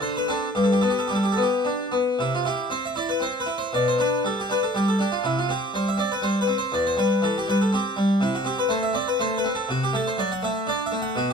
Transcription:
0.01 D3 C5
0.17 B4
0.28 C4 D4 A4
0.55 G2 G4
0.64 A4
0.72 G4
0.81 B3 A4
0.90 G4
0.99 A4
1.08 G3 G4
1.15 A4
1.23 G4
1.32 A4
1.37 B3
1.42 G4
1.65 D4
1.92 B3
2.19 C3 E4
2.35 F4
2.45 E4 G4
2.70 C4 C5
2.85 E5
2.96 E4 D5
3.09 B4
3.20 C4 C5
3.40 B4
3.46 E4
3.58 C5
3.73 B2 D5
3.88 C5
3.98 D4 B4
4.24 G3 A4
4.40 G4
4.50 D4 B4
4.63 A4
4.74 G3 G4
4.88 A4
4.99 D4 G4
5.12 F4
5.24 C3 E4
5.39 F4
5.49 C4 G4
5.74 G3 C5
5.88 E5
5.97 C4 D5
6.12 B4
6.22 G3 C5
6.41 B4
6.47 C4
6.58 C5
6.72 E2 D5
6.87 C5
6.97 G3 B4
7.22 E3 A4
7.38 G4
7.48 G3 B4
7.61 A4
7.72 C4 G4
7.97 G3
8.21 C3 E4
8.35 F#4
8.45 C4 G4
8.59 B4
8.69 A3 C5
8.83 E5
8.93 C4 D5
9.08 B4
9.19 A3 C5
9.38 B4
9.44 C4
9.55 A4
9.69 C3 F#4
9.83 G4
9.93 A3 A4
10.07 C5
10.18 F#3 D5
10.32 F#5
10.43 A3 E5
10.67 D4 D5
10.86 E5
10.92 A3
11.02 F#5
11.16 B2 F#4

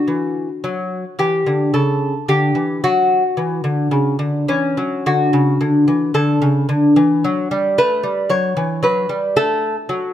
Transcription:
Already playing: F#4
0.08 E3
0.64 F#3
1.19 E3 G4
1.46 D3
1.74 C#3 A4
2.28 D3 G4
2.55 E3
2.84 F#3 F#4
3.37 E3
3.64 D3
3.91 C#3
4.19 D3
4.48 E3 C#4
4.77 F#3
5.06 D3 F#4
5.33 C#3
5.61 D3
5.88 E3
6.14 D3 A4
6.42 C#3
6.69 D3
6.96 E3
7.24 F#3
7.51 G3
7.78 A3 B4
8.03 G3
8.29 F#3 C#5
8.57 E3
8.83 F#3 B4
9.09 G3
9.36 A3 A4
9.89 F#3

